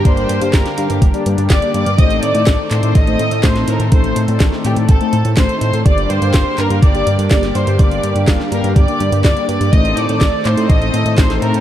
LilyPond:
<<
  \new Staff \with { instrumentName = "Violin section" } { \time 4/4 \key g \minor \tempo 4 = 124 <c'' c'''>4 <bes' bes''>4 r4 <d'' d'''>8 <d'' d'''>8 | <ees'' ees'''>8 <d'' d'''>4 <c'' c'''>8 <ees'' ees'''>4 <c'' c'''>8 <bes' bes''>8 | <c'' c'''>4 r8 <g' g''>8 <a' a''>4 <c'' c'''>8 <c'' c'''>8 | <d'' d'''>8 <c'' c'''>4 <bes' bes''>8 <d'' d'''>4 <d'' d'''>8 <c'' c'''>8 |
<d'' d'''>4 r8 <bes' bes''>8 <d'' d'''>4 <d'' d'''>8 <d'' d'''>8 | <ees'' ees'''>8 <d'' d'''>4 <c'' c'''>8 <ees'' ees'''>4 <c'' c'''>8 <bes' bes''>8 | }
  \new Staff \with { instrumentName = "Analog polysynth" } { \time 4/4 \key g \minor <bes d' g' d''>8. <bes d' g' f''>8. <bes d' g' f''>8 r16 <bes d' g' d''>16 <bes d' g' d''>8. <bes d' g' d''>16 <bes d' g' f''>16 r16 | <a c' ees' c''>8. <a c' ees' d''>8. <a c' ees' d''>8 r16 <a c' ees' c''>16 r8 <a c' ees' c''>4 | <a c' ees' c''>8. <a c' ees' d''>8. <a c' ees' d''>8 r16 <a c' ees' c''>16 r8 <a c' ees' c''>4 | <bes d' g' d''>8. <bes d' g' f''>8. <bes d' g' f''>8 r16 <bes d' g' d''>16 r8 <bes d' g' d''>4 |
<bes d' g' d''>8. <bes d' g' f''>8. <bes d' g' f''>8 r16 <bes d' g' d''>16 r8 <bes d' g' d''>4 | <a c' ees' c''>8. <a c' ees' d''>8. <a c' ees' d''>8 r16 <a c' ees' c''>16 r8 <a c' ees' c''>4 | }
  \new Staff \with { instrumentName = "Analog synth pad" } { \time 4/4 \key g \minor <d g bes g'>1 | <ees a c' a'>1~ | <ees a c' a'>1 | <d g bes g'>1~ |
<d g bes g'>1 | <ees a c' a'>1 | }
  \new Staff \with { instrumentName = "Analog synth bass" } { \clef bass \time 4/4 \key g \minor g,,8 g,16 g,16 g,,16 r16 g,16 g,16 g,,16 r16 g,16 g,16 g,,16 r16 g,16 g,16 | a,,8 a,16 a,16 a,,16 r16 a,16 a,16 a,,8 a,16 a,16 a,,8 a,16 a,16 | a,,8 a,16 a,16 a,,16 r16 a,16 a,16 a,,16 r16 a,16 a,16 a,,16 r16 a,16 a,16 | g,,8 g,16 g,16 g,,16 r16 g,16 g,16 g,,8 g,16 g,16 g,,8 g,16 g,16 |
g,,8 g,16 g,16 g,,16 r16 g,16 g,16 g,,16 r16 g,16 g,16 g,,16 r16 g,16 g,16 | a,,8 a,16 a,16 a,,16 r16 a,16 a,16 a,,8 a,16 a,16 a,,8 a,16 a,16 | }
  \new DrumStaff \with { instrumentName = "Drums" } \drummode { \time 4/4 <hh bd>16 hh16 hh16 hh16 <hc hh bd sn>16 <hh sn>16 hh16 hh16 <hh bd>16 hh16 hh16 hh16 <hc hh bd sn>16 hh16 hh16 hh16 | <hh bd>16 hh16 hh16 hh16 <hc hh bd sn>8 <hc hh>16 hh16 <hh bd>16 hh16 hh16 hh16 <hc hh bd sn>16 <hh sn>16 hh16 hh16 | <hh bd>16 hh16 hh16 hh16 <hc hh bd sn>16 sn16 hh16 hh16 <hh bd>16 hh16 hh16 hh16 <hc hh bd sn>16 hh16 hh16 hh16 | <hh bd>16 hh16 hh16 hh16 <hc hh bd sn>8 <hc hh>16 hh16 <hh bd>16 hh16 hh16 hh16 <hc hh bd sn>16 <hh sn>16 hh16 hh16 |
<hh bd>16 hh16 hh16 hh16 <hc hh bd sn>16 sn16 hh16 hh16 <hh bd>16 hh16 hh16 hh16 <hc hh bd sn>16 hh16 hh16 hh16 | <hh bd>16 hh16 hh16 hh16 <hc hh bd sn>8 <hc hh>16 hh16 <hh bd>16 hh16 hh16 hh16 <hc hh bd sn>16 <hh sn>16 hh16 hh16 | }
>>